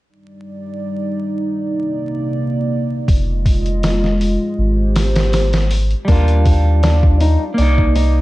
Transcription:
0.08 1.57 G3 medium
0.08 3.05 D#4 medium
0.08 1.57 D5 medium
1.59 3.07 C3 medium
1.59 3.07 A#3 medium
1.59 3.07 D5 medium
3.08 4.37 F1 loud
3.08 6.06 G#3 medium
3.08 4.57 F4 medium
3.08 4.57 D#5 medium
3.08 kick loud
3.08 open hi-hat medium
3.46 kick medium
3.46 open hi-hat medium
3.66 closed hi-hat soft
3.83 snare loud
3.83 open hi-hat medium
4.04 snare soft
4.21 open hi-hat medium
4.58 5.94 G#1 medium
4.58 6.07 G4 medium
4.58 6.07 C5 medium
4.96 snare medium
4.96 open hi-hat medium
5.16 snare loud
5.16 open hi-hat medium
5.33 snare medium
5.33 open hi-hat medium
5.53 snare loud
5.53 open hi-hat medium
5.71 open hi-hat medium
5.91 closed hi-hat soft
6.05 7.37 D#2 medium
6.05 7.50 G3 medium
6.05 6.44 A#3 medium
6.05 7.51 D4 medium
6.05 kick loud
6.05 open hi-hat medium
6.12 7.53 F4 medium
6.28 closed hi-hat soft
6.45 kick medium
6.45 open hi-hat medium
6.83 7.17 D4 medium
6.83 snare loud
6.83 open hi-hat medium
7.03 kick medium
7.21 7.43 D#4 medium
7.21 open hi-hat medium
7.54 8.21 A#3 medium
7.54 8.21 D5 medium
7.54 open hi-hat medium
7.58 8.21 C2 medium
7.58 8.21 D#4 medium
7.78 kick medium
7.95 8.21 D#4 medium
7.95 open hi-hat medium

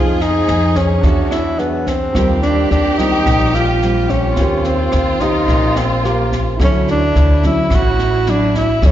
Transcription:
0.00 0.44 F2 medium
0.00 1.01 F3 medium
0.00 0.48 C4 medium
0.00 0.48 D#4 medium
0.00 1.01 D#4 soft
0.00 0.23 F4 loud
0.00 0.48 G#4 medium
0.00 1.03 G#4 soft
0.00 1.04 G#4 loud
0.00 1.03 C5 soft
0.20 0.78 D#4 loud
0.20 snare soft
0.48 1.00 F2 medium
0.48 cross-stick medium
0.48 snare soft
0.75 1.34 C#4 medium
0.75 1.55 G#4 medium
0.75 1.55 C#5 medium
0.75 kick soft
0.75 snare soft
1.01 2.11 E2 medium
1.01 2.12 E3 medium
1.01 2.11 D4 medium
1.01 2.13 F#4 soft
1.01 1.88 F#4 medium
1.01 2.13 G#4 soft
1.01 kick medium
1.01 snare soft
1.07 2.15 C#5 medium
1.31 1.60 E4 medium
1.31 cross-stick medium
1.31 snare soft
1.59 1.89 B3 medium
1.59 1.95 D4 medium
1.59 1.95 G#4 medium
1.59 1.96 C#5 medium
1.59 snare soft
1.87 2.42 C4 medium
1.87 kick soft
1.87 snare soft
2.13 2.67 D#2 medium
2.13 3.23 D#3 medium
2.13 2.70 G3 medium
2.13 4.32 C4 soft
2.13 2.70 C4 medium
2.13 4.33 F4 soft
2.13 2.71 F4 medium
2.13 4.33 G4 loud
2.13 4.34 G4 soft
2.13 kick medium
2.13 cross-stick medium
2.13 snare soft
2.19 4.35 A#4 medium
2.42 2.69 D4 medium
2.42 snare soft
2.71 3.22 D#2 medium
2.71 3.00 D4 medium
2.71 snare soft
2.98 3.77 G3 medium
2.98 3.78 C4 medium
2.98 3.56 D#4 medium
2.98 3.78 F4 medium
2.98 kick soft
2.98 snare soft
3.26 4.33 A#1 medium
3.26 4.35 A#2 medium
3.26 kick medium
3.26 cross-stick medium
3.26 snare soft
3.54 4.11 F4 medium
3.54 snare soft
3.82 4.33 G3 medium
3.82 4.34 C4 medium
3.82 4.34 F4 medium
3.82 snare soft
4.09 4.67 C#4 medium
4.09 kick soft
4.09 snare soft
4.34 4.89 D#2 medium
4.34 6.54 C4 soft
4.34 6.59 F4 loud
4.34 6.56 F4 soft
4.34 kick medium
4.34 cross-stick medium
4.34 snare soft
4.39 5.46 D#3 medium
4.39 6.57 G4 soft
4.39 5.17 G4 medium
4.39 5.18 C5 medium
4.39 6.57 C5 soft
4.64 5.23 C4 medium
4.64 snare soft
4.92 5.45 D#2 medium
4.92 cross-stick medium
4.92 snare soft
5.20 6.00 C#4 medium
5.20 5.79 D#4 medium
5.20 6.00 G4 medium
5.20 6.00 C5 medium
5.20 kick soft
5.20 snare soft
5.48 6.56 A#1 medium
5.48 6.57 A#2 medium
5.48 kick medium
5.48 snare soft
5.76 6.07 C4 medium
5.76 cross-stick medium
5.76 snare soft
6.04 6.33 A#3 medium
6.04 6.55 C#4 medium
6.04 6.56 G4 medium
6.04 6.56 C5 medium
6.04 snare soft
6.32 kick soft
6.32 snare soft
6.56 7.11 D2 medium
6.56 7.69 D3 medium
6.56 8.77 E4 soft
6.56 8.92 E4 medium
6.56 8.78 F#4 soft
6.56 kick medium
6.56 cross-stick medium
6.56 snare soft
6.60 7.15 F#3 medium
6.60 7.16 C#4 medium
6.60 6.88 C#4 loud
6.60 7.16 E4 medium
6.60 8.79 A4 soft
6.60 8.80 C#5 medium
6.88 7.41 D4 loud
6.88 snare soft
7.16 7.67 D2 medium
7.16 snare soft
7.43 8.22 F#3 medium
7.43 8.23 C#4 medium
7.43 8.23 E4 medium
7.43 7.76 E4 loud
7.43 kick soft
7.43 snare soft
7.70 8.78 A1 medium
7.70 8.80 A2 medium
7.70 kick medium
7.70 cross-stick medium
7.70 snare soft
7.75 8.31 F#4 loud
7.99 snare soft
8.26 8.79 F#3 medium
8.26 8.79 C#4 medium
8.26 8.56 D4 loud
8.26 8.79 E4 medium
8.26 snare soft
8.54 8.88 E4 medium
8.54 kick soft
8.54 snare soft
8.80 8.92 D2 medium
8.80 8.92 D3 medium
8.80 8.92 F#3 medium
8.80 8.92 C#4 medium
8.80 8.92 E4 soft
8.80 8.92 E4 medium
8.80 8.92 F#4 soft
8.80 8.92 A4 soft
8.80 kick medium
8.80 cross-stick medium
8.80 snare soft
8.86 8.92 C#4 medium
8.86 8.92 C#5 medium

